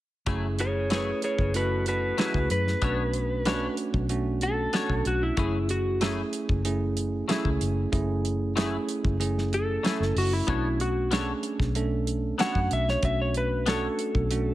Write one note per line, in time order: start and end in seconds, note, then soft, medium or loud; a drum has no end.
0.26 1.11 F#1 medium
0.26 0.46 F#3 medium
0.26 0.87 A3 medium
0.26 0.46 A3 medium
0.26 0.87 C#4 medium
0.26 0.87 E4 medium
0.26 0.47 E4 medium
0.26 0.87 G#4 medium
0.26 0.47 G#4 medium
0.26 kick loud
0.26 closed hi-hat medium
0.59 0.91 G#4 medium
0.59 0.91 C#5 medium
0.59 closed hi-hat medium
0.90 1.10 F#3 medium
0.90 1.51 A3 medium
0.90 1.10 A3 medium
0.90 1.51 C#4 medium
0.90 1.51 E4 medium
0.90 1.10 E4 medium
0.90 1.21 G#4 medium
0.90 1.11 G#4 medium
0.90 1.51 B4 medium
0.90 1.23 C#5 medium
0.90 snare loud
0.90 closed hi-hat medium
1.22 1.53 G#4 medium
1.22 1.55 C#5 medium
1.22 closed hi-hat medium
1.39 2.11 F#1 medium
1.39 kick medium
1.54 2.15 A3 medium
1.54 2.15 C#4 medium
1.54 2.15 E4 medium
1.54 1.85 F#4 medium
1.54 2.15 A4 medium
1.54 1.86 B4 medium
1.54 closed hi-hat medium
1.86 2.17 F#4 medium
1.86 2.19 B4 medium
1.86 closed hi-hat medium
2.18 2.37 F#3 medium
2.18 2.78 A3 medium
2.18 2.38 A3 medium
2.18 2.79 C#4 medium
2.18 2.79 E4 medium
2.18 2.38 E4 medium
2.18 2.48 F#4 medium
2.18 2.79 G#4 medium
2.18 2.38 G#4 medium
2.18 2.50 B4 medium
2.18 snare loud
2.18 closed hi-hat medium
2.34 2.46 C#2 medium
2.34 kick medium
2.50 2.74 F#2 medium
2.50 3.75 B4 medium
2.50 closed hi-hat medium
2.67 snare soft
2.82 3.67 B1 medium
2.82 3.43 A3 medium
2.82 3.01 B3 medium
2.82 3.43 C#4 medium
2.82 3.42 D4 medium
2.82 3.02 D4 medium
2.82 3.43 F#4 medium
2.82 3.02 A4 medium
2.82 3.02 C#5 medium
2.82 kick loud
2.82 closed hi-hat medium
3.14 closed hi-hat medium
3.45 4.06 A3 medium
3.45 3.65 B3 medium
3.45 4.06 C#4 medium
3.45 4.06 D4 medium
3.45 3.66 D4 medium
3.45 4.06 F#4 loud
3.45 3.66 A4 medium
3.45 3.66 C#5 loud
3.45 snare loud
3.45 closed hi-hat medium
3.77 closed hi-hat medium
3.94 4.66 B1 medium
3.94 kick medium
4.09 4.70 A3 medium
4.09 4.70 C#4 medium
4.09 4.70 D4 medium
4.09 4.70 F#4 medium
4.09 closed hi-hat medium
4.41 5.04 A4 medium
4.41 closed hi-hat medium
4.73 5.34 A3 medium
4.73 4.93 B3 medium
4.73 5.34 C#4 medium
4.73 5.34 D4 medium
4.73 4.93 D4 medium
4.73 5.34 F#4 medium
4.73 4.94 A4 medium
4.73 4.94 C#5 medium
4.73 snare loud
4.73 closed hi-hat medium
4.89 5.02 B1 medium
4.89 kick medium
5.05 5.30 B1 medium
5.05 5.22 F#4 medium
5.05 closed hi-hat medium
5.23 5.69 E4 medium
5.37 6.22 F#1 medium
5.37 5.56 F#3 medium
5.37 5.98 A3 medium
5.37 5.57 A3 medium
5.37 5.98 C#4 medium
5.37 5.98 E4 medium
5.37 5.57 E4 medium
5.37 5.98 G#4 medium
5.37 5.58 G#4 medium
5.37 kick loud
5.37 closed hi-hat medium
5.69 6.01 F#4 medium
5.69 closed hi-hat medium
6.01 6.20 F#3 medium
6.01 6.61 A3 medium
6.01 6.21 A3 medium
6.01 6.62 C#4 medium
6.01 6.62 E4 medium
6.01 6.21 E4 medium
6.01 6.62 G#4 medium
6.01 6.22 G#4 medium
6.01 snare loud
6.01 closed hi-hat medium
6.33 closed hi-hat medium
6.49 7.22 F#1 medium
6.49 kick medium
6.65 7.25 A3 medium
6.65 7.25 C#4 medium
6.65 7.25 E4 medium
6.65 7.25 G#4 medium
6.65 closed hi-hat medium
6.97 closed hi-hat medium
7.28 7.48 F#3 medium
7.28 7.48 A3 medium
7.28 7.89 A3 loud
7.28 7.89 C#4 medium
7.28 7.89 E4 medium
7.28 7.49 E4 medium
7.28 7.89 G#4 loud
7.28 7.49 G#4 loud
7.28 snare loud
7.28 closed hi-hat medium
7.45 7.57 C#2 medium
7.45 kick medium
7.61 7.85 F#1 medium
7.61 closed hi-hat medium
7.92 8.77 F#1 medium
7.92 8.53 A3 medium
7.92 8.53 C#4 medium
7.92 8.53 E4 medium
7.92 8.53 G#4 loud
7.92 kick loud
7.92 closed hi-hat medium
8.25 closed hi-hat medium
8.56 8.75 F#3 medium
8.56 9.17 A3 medium
8.56 8.76 A3 medium
8.56 9.17 C#4 medium
8.56 9.17 E4 medium
8.56 8.76 E4 medium
8.56 9.17 G#4 loud
8.56 8.77 G#4 medium
8.56 snare loud
8.56 closed hi-hat medium
8.89 closed hi-hat medium
9.05 9.77 F#1 loud
9.05 kick medium
9.20 9.80 A3 medium
9.20 9.80 C#4 medium
9.20 9.80 E4 medium
9.20 9.80 G#4 medium
9.20 closed hi-hat medium
9.38 snare soft
9.53 10.15 A4 medium
9.53 closed hi-hat medium
9.83 10.03 F#3 medium
9.83 10.44 A3 medium
9.83 10.03 A3 medium
9.83 10.44 C#4 medium
9.83 10.44 E4 medium
9.83 10.04 E4 medium
9.83 10.04 G#4 medium
9.83 10.44 A4 medium
9.83 snare loud
9.83 closed hi-hat medium
10.00 10.12 F#1 medium
10.00 snare soft
10.16 10.40 F#1 medium
10.16 10.33 F#4 medium
10.16 open hi-hat medium
10.33 10.79 E4 medium
10.47 11.32 B1 loud
10.47 11.08 A3 medium
10.47 10.67 B3 medium
10.47 11.08 C#4 medium
10.47 11.08 D4 medium
10.47 10.67 D4 medium
10.47 11.08 F#4 medium
10.47 10.68 A4 medium
10.47 10.68 C#5 medium
10.47 kick loud
10.47 closed hi-hat medium
10.80 11.12 F#4 medium
10.80 closed hi-hat medium
11.11 11.72 A3 medium
11.11 11.31 B3 medium
11.11 11.72 C#4 medium
11.11 11.72 D4 medium
11.11 11.31 D4 medium
11.11 11.72 G#4 medium
11.11 11.32 A4 medium
11.11 11.32 C#5 medium
11.11 snare loud
11.11 closed hi-hat medium
11.43 closed hi-hat medium
11.60 12.32 B1 medium
11.60 kick medium
11.60 snare soft
11.75 12.36 A3 medium
11.75 12.36 C#4 medium
11.75 12.36 D4 medium
11.75 12.36 A4 medium
11.75 closed hi-hat medium
12.07 closed hi-hat medium
12.38 13.00 A3 medium
12.38 12.58 B3 medium
12.38 13.00 C#4 medium
12.38 12.59 D4 medium
12.38 13.00 D4 medium
12.38 13.00 F#4 medium
12.38 12.59 A4 medium
12.38 12.59 C#5 medium
12.38 12.71 F#5 medium
12.38 snare loud
12.38 closed hi-hat medium
12.55 12.67 F#2 medium
12.55 kick medium
12.71 12.95 B1 medium
12.71 12.88 E5 medium
12.71 closed hi-hat medium
12.88 13.04 C#5 medium
12.88 snare soft
13.03 13.87 B1 loud
13.03 13.64 A3 medium
13.03 13.64 C#4 medium
13.03 13.64 D4 medium
13.03 13.64 F#4 medium
13.03 13.20 E5 medium
13.03 kick loud
13.03 closed hi-hat medium
13.21 13.36 C#5 medium
13.34 13.67 B4 medium
13.34 closed hi-hat medium
13.66 14.27 A3 medium
13.66 13.86 B3 medium
13.66 14.28 C#4 medium
13.66 13.86 D4 medium
13.66 14.28 D4 medium
13.66 14.28 F#4 medium
13.66 13.87 A4 medium
13.66 14.54 A4 medium
13.66 13.87 C#5 medium
13.66 snare loud
13.66 closed hi-hat medium
13.99 closed hi-hat medium
14.15 14.54 B1 medium
14.15 kick medium
14.31 14.54 A3 medium
14.31 14.54 C#4 medium
14.31 14.54 D4 medium
14.31 14.54 F#4 medium
14.31 closed hi-hat medium